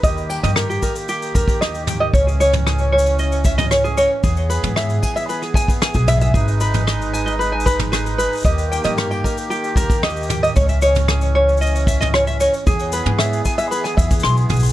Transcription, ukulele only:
X:1
M:4/4
L:1/16
Q:1/4=114
K:C#dor
V:1 name="Ukulele"
d2 =g d A =G A z G2 A2 d2 g d | c G c z G2 c2 d2 e d c G c z | G2 B2 e2 g e B G g z g G e e | G2 B2 d2 g d B g B z G2 B2 |
d2 =g d A g A z =G2 A2 d2 g d | c e c z G2 c2 d2 e d c e c z | G2 B2 e2 g e B g e z ^b z G z |]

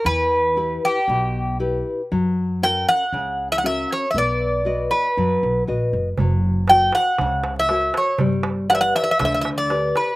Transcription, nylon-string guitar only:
X:1
M:4/4
L:1/8
Q:1/4=118
K:none
V:1 name="Nylon-string guitar"
E,2 [EGB]2 B,,2 [EGB]2 | ^F,2 [^C^F^A]2 ^C,2 [CFA]2 | B,2 [^FB^d]2 ^F,2 [FBd]2 | ^F,2 [^F^A^c]2 ^C,2 [FAc]2 |
G,2 [GBd]2 D,2 [GBd]2 |]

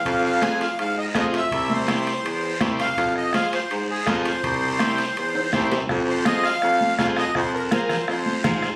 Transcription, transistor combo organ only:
X:1
M:4/4
L:1/8
Q:1/4=164
K:Fm
V:1 name="Transistor combo organ"
z2 [FAc] z3 [FAc] z | z2 [=EGc] z3 [EGc] z | z2 [FAc] z3 [FAc] z | z2 [=EGc] z3 [EGc] z |
z2 [FAc] z3 [FAc] z | z2 [FAB] z3 [FAc] z |]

